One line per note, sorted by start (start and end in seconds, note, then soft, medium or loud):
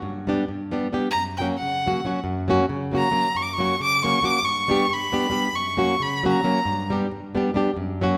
0.02 0.38 G2 medium
0.27 0.43 G3 medium
0.27 0.44 B3 medium
0.27 0.44 D4 medium
0.27 0.44 G4 medium
0.48 0.82 G2 medium
0.71 0.87 G3 medium
0.71 0.87 B3 medium
0.71 0.87 D4 medium
0.71 0.87 G4 medium
0.93 1.07 G3 medium
0.93 1.08 B3 medium
0.93 1.08 D4 medium
0.93 1.08 G4 medium
1.11 1.50 F#2 medium
1.11 1.23 A#5 loud
1.37 1.55 F#3 medium
1.37 1.55 A#3 medium
1.37 1.47 G5 medium
1.42 1.55 C#4 medium
1.42 1.56 F#4 medium
1.58 2.18 F#5 medium
1.62 1.94 C#3 soft
1.86 1.99 F#3 medium
1.86 2.00 A#3 soft
1.86 2.00 C#4 medium
1.86 2.00 F#4 medium
2.05 2.19 F#3 medium
2.05 2.19 A#3 medium
2.05 2.19 C#4 medium
2.05 2.19 F#4 medium
2.24 2.59 F#2 medium
2.48 2.64 F#3 medium
2.48 2.64 A#3 medium
2.48 2.65 C#4 medium
2.48 2.65 F#4 loud
2.69 3.03 C#3 medium
2.91 3.07 F#3 medium
2.91 3.08 A#3 medium
2.91 3.08 C#4 medium
2.91 3.09 F#4 medium
2.97 3.38 A#5 medium
3.11 3.27 F#3 medium
3.11 3.27 A#3 medium
3.11 3.28 C#4 medium
3.11 3.28 F#4 medium
3.35 3.70 F#2 soft
3.35 3.44 C#6 medium
3.43 3.55 D6 medium
3.53 3.82 C#6 medium
3.58 3.74 F#3 medium
3.58 3.75 A#3 medium
3.58 3.75 C#4 medium
3.58 3.75 F#4 medium
3.80 4.13 C#3 soft
3.80 4.04 D6 loud
4.04 4.19 F#3 medium
4.04 4.19 A#3 medium
4.04 4.19 C#4 medium
4.04 4.19 F#4 medium
4.04 4.27 C#6 medium
4.21 4.37 F#3 soft
4.21 4.38 A#3 medium
4.21 4.38 C#4 soft
4.21 4.39 F#4 medium
4.21 4.47 D6 loud
4.43 4.79 G2 medium
4.43 4.94 C#6 medium
4.68 4.84 G3 medium
4.68 4.85 B3 medium
4.68 4.85 D4 medium
4.68 4.86 G4 medium
4.89 5.23 G2 medium
4.89 5.57 B5 loud
5.12 5.28 G3 medium
5.12 5.28 B3 medium
5.12 5.28 D4 medium
5.12 5.29 G4 medium
5.30 5.47 G3 medium
5.30 5.47 B3 medium
5.30 5.48 D4 medium
5.30 5.48 G4 medium
5.53 5.90 F#2 medium
5.53 6.04 C#6 medium
5.77 5.94 F#3 medium
5.77 5.94 A#3 medium
5.77 5.94 C#4 medium
5.77 5.95 F#4 medium
6.00 6.34 C#3 medium
6.00 6.26 B5 medium
6.23 6.39 F#3 medium
6.23 6.40 A#3 medium
6.23 6.40 C#4 medium
6.23 6.40 F#4 medium
6.29 6.89 A#5 medium
6.44 6.59 F#3 medium
6.44 6.59 A#3 medium
6.44 6.60 C#4 medium
6.44 6.60 F#4 medium
6.65 7.01 G2 medium
6.90 7.06 G3 medium
6.90 7.06 B3 medium
6.90 7.07 D4 medium
6.90 7.07 G4 medium
7.11 7.45 G2 medium
7.35 7.50 G3 medium
7.35 7.50 B3 medium
7.35 7.50 D4 medium
7.35 7.51 G4 medium
7.54 7.70 G3 medium
7.54 7.70 B3 medium
7.54 7.70 D4 medium
7.54 7.71 G4 medium
7.77 8.12 F#2 medium
8.01 8.17 F#3 medium
8.01 8.17 A#3 medium
8.01 8.17 C#4 medium
8.01 8.18 F#4 medium